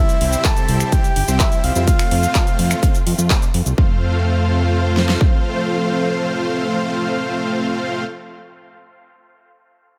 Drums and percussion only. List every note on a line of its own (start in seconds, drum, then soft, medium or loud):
0.09 closed hi-hat soft
0.09 shaker soft
0.21 open hi-hat loud
0.33 closed hi-hat soft
0.33 shaker medium
0.44 kick loud
0.44 clap loud
0.44 closed hi-hat loud
0.44 shaker medium
0.57 closed hi-hat soft
0.57 shaker soft
0.68 open hi-hat loud
0.80 finger snap medium
0.80 closed hi-hat soft
0.80 shaker medium
0.92 kick loud
0.92 closed hi-hat loud
0.92 shaker medium
1.04 closed hi-hat soft
1.04 shaker soft
1.16 open hi-hat loud
1.28 closed hi-hat soft
1.28 shaker medium
1.40 kick loud
1.40 clap loud
1.40 closed hi-hat medium
1.40 shaker medium
1.52 closed hi-hat soft
1.52 shaker soft
1.64 open hi-hat loud
1.76 closed hi-hat soft
1.76 shaker medium
1.88 kick loud
1.88 closed hi-hat loud
1.88 shaker medium
1.99 finger snap medium
1.99 open hi-hat medium
1.99 shaker soft
2.11 open hi-hat loud
2.23 closed hi-hat soft
2.23 shaker medium
2.35 kick loud
2.35 clap loud
2.35 closed hi-hat loud
2.35 shaker medium
2.47 closed hi-hat soft
2.47 shaker soft
2.59 open hi-hat loud
2.71 finger snap medium
2.71 closed hi-hat soft
2.71 shaker medium
2.83 kick loud
2.83 closed hi-hat loud
2.83 shaker medium
2.95 closed hi-hat soft
2.95 shaker soft
3.07 open hi-hat loud
3.19 closed hi-hat soft
3.19 shaker medium
3.30 kick loud
3.30 clap loud
3.30 closed hi-hat loud
3.30 shaker medium
3.42 closed hi-hat soft
3.42 shaker soft
3.54 open hi-hat loud
3.66 closed hi-hat soft
3.66 shaker medium
3.78 kick loud
4.97 snare medium
5.09 snare medium
5.21 kick medium